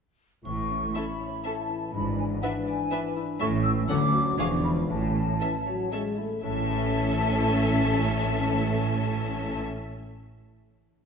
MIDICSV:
0, 0, Header, 1, 10, 480
1, 0, Start_track
1, 0, Key_signature, 3, "major"
1, 0, Tempo, 492207
1, 447, Time_signature, 3, 2, 24, 8
1, 4282, Tempo, 510204
1, 6202, Tempo, 496278
1, 10672, End_track
2, 0, Start_track
2, 0, Title_t, "Flute section"
2, 0, Program_c, 0, 73
2, 442, Note_on_c, 0, 85, 61
2, 895, Note_off_c, 0, 85, 0
2, 920, Note_on_c, 0, 83, 65
2, 1403, Note_on_c, 0, 81, 57
2, 1409, Note_off_c, 0, 83, 0
2, 1877, Note_off_c, 0, 81, 0
2, 1881, Note_on_c, 0, 83, 65
2, 2121, Note_off_c, 0, 83, 0
2, 2126, Note_on_c, 0, 80, 59
2, 2184, Note_off_c, 0, 80, 0
2, 2364, Note_on_c, 0, 78, 59
2, 2423, Note_off_c, 0, 78, 0
2, 2603, Note_on_c, 0, 80, 64
2, 3075, Note_off_c, 0, 80, 0
2, 3318, Note_on_c, 0, 85, 76
2, 3377, Note_off_c, 0, 85, 0
2, 3553, Note_on_c, 0, 88, 79
2, 3612, Note_off_c, 0, 88, 0
2, 3794, Note_on_c, 0, 86, 81
2, 4270, Note_off_c, 0, 86, 0
2, 4282, Note_on_c, 0, 85, 67
2, 4339, Note_off_c, 0, 85, 0
2, 4511, Note_on_c, 0, 83, 66
2, 4567, Note_off_c, 0, 83, 0
2, 4752, Note_on_c, 0, 81, 61
2, 5699, Note_off_c, 0, 81, 0
2, 6205, Note_on_c, 0, 81, 65
2, 9264, Note_off_c, 0, 81, 0
2, 10672, End_track
3, 0, Start_track
3, 0, Title_t, "Violin section"
3, 0, Program_c, 1, 48
3, 920, Note_on_c, 1, 76, 35
3, 998, Note_off_c, 1, 76, 0
3, 1402, Note_on_c, 1, 76, 36
3, 1480, Note_off_c, 1, 76, 0
3, 2367, Note_on_c, 1, 76, 46
3, 2445, Note_off_c, 1, 76, 0
3, 2841, Note_on_c, 1, 76, 45
3, 2919, Note_off_c, 1, 76, 0
3, 3310, Note_on_c, 1, 76, 46
3, 3388, Note_off_c, 1, 76, 0
3, 3793, Note_on_c, 1, 78, 48
3, 3871, Note_off_c, 1, 78, 0
3, 4277, Note_on_c, 1, 77, 45
3, 4353, Note_off_c, 1, 77, 0
3, 5239, Note_on_c, 1, 76, 40
3, 5314, Note_off_c, 1, 76, 0
3, 5720, Note_on_c, 1, 76, 42
3, 5796, Note_off_c, 1, 76, 0
3, 6204, Note_on_c, 1, 76, 56
3, 9263, Note_off_c, 1, 76, 0
3, 10672, End_track
4, 0, Start_track
4, 0, Title_t, "Violin section"
4, 0, Program_c, 2, 48
4, 938, Note_on_c, 2, 69, 34
4, 1016, Note_off_c, 2, 69, 0
4, 1419, Note_on_c, 2, 69, 35
4, 1497, Note_off_c, 2, 69, 0
4, 2372, Note_on_c, 2, 71, 40
4, 2450, Note_off_c, 2, 71, 0
4, 2843, Note_on_c, 2, 71, 43
4, 2921, Note_off_c, 2, 71, 0
4, 3319, Note_on_c, 2, 69, 47
4, 3397, Note_off_c, 2, 69, 0
4, 3788, Note_on_c, 2, 69, 48
4, 3866, Note_off_c, 2, 69, 0
4, 4276, Note_on_c, 2, 68, 48
4, 4352, Note_off_c, 2, 68, 0
4, 5234, Note_on_c, 2, 69, 39
4, 5309, Note_off_c, 2, 69, 0
4, 5727, Note_on_c, 2, 69, 40
4, 5802, Note_off_c, 2, 69, 0
4, 6206, Note_on_c, 2, 69, 61
4, 9265, Note_off_c, 2, 69, 0
4, 10672, End_track
5, 0, Start_track
5, 0, Title_t, "Harp"
5, 0, Program_c, 3, 46
5, 439, Note_on_c, 3, 45, 38
5, 686, Note_on_c, 3, 61, 32
5, 929, Note_on_c, 3, 69, 33
5, 1167, Note_on_c, 3, 73, 37
5, 1402, Note_off_c, 3, 69, 0
5, 1414, Note_on_c, 3, 69, 35
5, 1655, Note_on_c, 3, 64, 38
5, 1892, Note_on_c, 3, 44, 44
5, 1908, Note_off_c, 3, 45, 0
5, 1909, Note_off_c, 3, 73, 0
5, 1910, Note_off_c, 3, 61, 0
5, 1911, Note_off_c, 3, 69, 0
5, 2130, Note_on_c, 3, 62, 39
5, 2372, Note_on_c, 3, 71, 40
5, 2608, Note_on_c, 3, 74, 42
5, 2832, Note_off_c, 3, 71, 0
5, 2843, Note_on_c, 3, 71, 42
5, 3073, Note_off_c, 3, 64, 0
5, 3085, Note_on_c, 3, 64, 46
5, 3319, Note_on_c, 3, 45, 57
5, 3341, Note_off_c, 3, 71, 0
5, 3342, Note_off_c, 3, 74, 0
5, 3344, Note_off_c, 3, 44, 0
5, 3344, Note_off_c, 3, 62, 0
5, 3547, Note_off_c, 3, 64, 0
5, 3555, Note_on_c, 3, 64, 41
5, 3565, Note_on_c, 3, 69, 41
5, 3795, Note_on_c, 3, 50, 57
5, 3816, Note_off_c, 3, 45, 0
5, 3817, Note_off_c, 3, 64, 0
5, 4026, Note_off_c, 3, 69, 0
5, 4032, Note_on_c, 3, 66, 45
5, 4040, Note_on_c, 3, 69, 46
5, 4280, Note_on_c, 3, 52, 54
5, 4299, Note_off_c, 3, 50, 0
5, 4299, Note_off_c, 3, 66, 0
5, 4300, Note_off_c, 3, 69, 0
5, 4519, Note_on_c, 3, 65, 41
5, 4525, Note_on_c, 3, 68, 43
5, 4759, Note_on_c, 3, 45, 49
5, 4778, Note_off_c, 3, 52, 0
5, 4779, Note_off_c, 3, 65, 0
5, 4782, Note_off_c, 3, 68, 0
5, 4997, Note_on_c, 3, 61, 35
5, 5240, Note_on_c, 3, 69, 37
5, 5478, Note_on_c, 3, 73, 37
5, 5707, Note_off_c, 3, 69, 0
5, 5718, Note_on_c, 3, 69, 39
5, 5957, Note_on_c, 3, 64, 38
5, 6189, Note_off_c, 3, 45, 0
5, 6200, Note_on_c, 3, 45, 45
5, 6267, Note_on_c, 3, 57, 46
5, 6323, Note_off_c, 3, 61, 0
5, 6335, Note_on_c, 3, 61, 45
5, 6391, Note_off_c, 3, 64, 0
5, 6402, Note_on_c, 3, 64, 42
5, 6460, Note_off_c, 3, 69, 0
5, 6472, Note_on_c, 3, 69, 43
5, 6538, Note_on_c, 3, 76, 46
5, 9098, Note_off_c, 3, 73, 0
5, 9394, Note_off_c, 3, 61, 0
5, 9461, Note_off_c, 3, 64, 0
5, 9487, Note_off_c, 3, 57, 0
5, 9531, Note_off_c, 3, 69, 0
5, 9597, Note_off_c, 3, 76, 0
5, 9972, Note_off_c, 3, 45, 0
5, 10672, End_track
6, 0, Start_track
6, 0, Title_t, "Viola section"
6, 0, Program_c, 4, 48
6, 937, Note_on_c, 4, 61, 37
6, 1015, Note_off_c, 4, 61, 0
6, 1420, Note_on_c, 4, 61, 35
6, 1498, Note_off_c, 4, 61, 0
6, 2373, Note_on_c, 4, 62, 42
6, 2451, Note_off_c, 4, 62, 0
6, 2849, Note_on_c, 4, 62, 47
6, 2927, Note_off_c, 4, 62, 0
6, 3325, Note_on_c, 4, 61, 47
6, 3403, Note_off_c, 4, 61, 0
6, 3796, Note_on_c, 4, 61, 51
6, 3874, Note_off_c, 4, 61, 0
6, 4277, Note_on_c, 4, 62, 48
6, 4352, Note_off_c, 4, 62, 0
6, 5243, Note_on_c, 4, 61, 40
6, 5318, Note_off_c, 4, 61, 0
6, 5725, Note_on_c, 4, 61, 37
6, 5800, Note_off_c, 4, 61, 0
6, 6207, Note_on_c, 4, 61, 57
6, 9266, Note_off_c, 4, 61, 0
6, 10672, End_track
7, 0, Start_track
7, 0, Title_t, "French horn section"
7, 0, Program_c, 5, 60
7, 433, Note_on_c, 5, 52, 43
7, 434, Note_on_c, 5, 64, 44
7, 1847, Note_off_c, 5, 64, 0
7, 1900, Note_on_c, 5, 62, 48
7, 3280, Note_off_c, 5, 52, 0
7, 3330, Note_off_c, 5, 62, 0
7, 3331, Note_on_c, 5, 52, 56
7, 3334, Note_on_c, 5, 61, 55
7, 3770, Note_off_c, 5, 52, 0
7, 3771, Note_off_c, 5, 61, 0
7, 3803, Note_on_c, 5, 61, 55
7, 3806, Note_on_c, 5, 54, 57
7, 4273, Note_on_c, 5, 62, 55
7, 4274, Note_on_c, 5, 53, 54
7, 4275, Note_off_c, 5, 61, 0
7, 4276, Note_off_c, 5, 54, 0
7, 4755, Note_off_c, 5, 53, 0
7, 4755, Note_off_c, 5, 62, 0
7, 4758, Note_on_c, 5, 61, 49
7, 4762, Note_on_c, 5, 52, 48
7, 5191, Note_off_c, 5, 61, 0
7, 5193, Note_off_c, 5, 52, 0
7, 5228, Note_on_c, 5, 52, 49
7, 5339, Note_off_c, 5, 52, 0
7, 5471, Note_on_c, 5, 54, 54
7, 5712, Note_off_c, 5, 54, 0
7, 5721, Note_on_c, 5, 56, 54
7, 5959, Note_off_c, 5, 56, 0
7, 5961, Note_on_c, 5, 57, 50
7, 6196, Note_off_c, 5, 57, 0
7, 6199, Note_on_c, 5, 61, 58
7, 6202, Note_on_c, 5, 52, 56
7, 9258, Note_off_c, 5, 61, 0
7, 9262, Note_off_c, 5, 52, 0
7, 10672, End_track
8, 0, Start_track
8, 0, Title_t, "Cello section"
8, 0, Program_c, 6, 48
8, 441, Note_on_c, 6, 45, 44
8, 848, Note_off_c, 6, 45, 0
8, 1893, Note_on_c, 6, 44, 47
8, 2292, Note_off_c, 6, 44, 0
8, 3326, Note_on_c, 6, 45, 61
8, 3721, Note_off_c, 6, 45, 0
8, 3798, Note_on_c, 6, 38, 57
8, 4201, Note_off_c, 6, 38, 0
8, 4277, Note_on_c, 6, 40, 58
8, 4676, Note_off_c, 6, 40, 0
8, 4755, Note_on_c, 6, 45, 52
8, 5157, Note_off_c, 6, 45, 0
8, 6206, Note_on_c, 6, 45, 55
8, 9265, Note_off_c, 6, 45, 0
8, 10672, End_track
9, 0, Start_track
9, 0, Title_t, "Double bass section"
9, 0, Program_c, 7, 48
9, 440, Note_on_c, 7, 33, 45
9, 847, Note_off_c, 7, 33, 0
9, 1890, Note_on_c, 7, 32, 53
9, 2291, Note_off_c, 7, 32, 0
9, 3323, Note_on_c, 7, 33, 62
9, 3719, Note_off_c, 7, 33, 0
9, 3797, Note_on_c, 7, 38, 59
9, 4200, Note_off_c, 7, 38, 0
9, 4278, Note_on_c, 7, 28, 53
9, 4677, Note_off_c, 7, 28, 0
9, 4757, Note_on_c, 7, 33, 58
9, 5158, Note_off_c, 7, 33, 0
9, 6203, Note_on_c, 7, 33, 58
9, 9262, Note_off_c, 7, 33, 0
9, 10672, End_track
10, 0, Start_track
10, 0, Title_t, "Drums"
10, 441, Note_on_c, 9, 81, 29
10, 539, Note_off_c, 9, 81, 0
10, 10672, End_track
0, 0, End_of_file